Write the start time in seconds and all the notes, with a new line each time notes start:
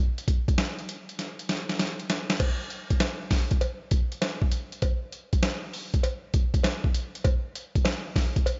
0.18 closed hi-hat
0.28 kick, closed hi-hat
0.48 kick, closed hi-hat
0.58 snare, closed hi-hat
0.79 closed hi-hat
0.89 closed hi-hat
1.09 closed hi-hat
1.19 snare, closed hi-hat
1.39 closed hi-hat
1.49 snare, closed hi-hat
1.69 snare, closed hi-hat
1.79 snare, closed hi-hat
2.00 closed hi-hat
2.10 snare, closed hi-hat
2.30 snare, closed hi-hat
2.40 kick, closed hi-hat, crash, cowbell
2.70 closed hi-hat
2.90 kick, closed hi-hat
3.00 snare, closed hi-hat, cowbell
3.31 kick, snare, open hi-hat
3.51 kick, closed hi-hat
3.61 closed hi-hat, cowbell
3.91 kick, closed hi-hat
4.12 closed hi-hat
4.22 snare, closed hi-hat, cowbell
4.42 kick
4.52 closed hi-hat
4.72 closed hi-hat
4.82 kick, closed hi-hat, cowbell
5.12 closed hi-hat
5.33 kick, closed hi-hat
5.43 snare, closed hi-hat, cowbell
5.74 open hi-hat
5.94 kick, closed hi-hat
6.03 closed hi-hat, cowbell
6.34 kick, closed hi-hat
6.54 kick, closed hi-hat
6.63 snare, closed hi-hat, cowbell
6.84 kick
6.94 closed hi-hat
7.15 closed hi-hat
7.24 kick, closed hi-hat, cowbell
7.55 closed hi-hat
7.75 kick, closed hi-hat
7.85 snare, closed hi-hat, cowbell
8.16 kick, snare, open hi-hat
8.36 kick, closed hi-hat
8.46 closed hi-hat, cowbell